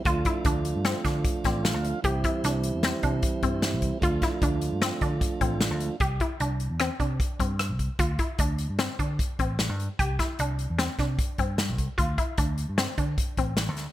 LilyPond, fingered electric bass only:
\new Staff \with { instrumentName = "Fingered electric bass" } { \clef bass \time 5/4 \key c \major \tempo 4 = 151 d,8 r8 d,8. g,8 r16 d8 r8 a,,8. d,8 r16 | c,8 r8 c,8. e,8 r16 c8 r8 g,8. c,8 r16 | d,8 r8 d,8. g,8 r16 d8 r8 a,,8. d,8 r16 | c,8 r8 c,8. e,8 r16 c8 r8 g,8. c,8 r16 |
d,8 r8 d,8. g,8 r16 d8 r8 a,,8. g,8 r16 | c,8 r8 c,8. e,8 r16 c8 r8 g,8. c,8 r16 | d,8 r8 d,8. g,8 r16 d8 r8 a,,8. d,8 r16 | }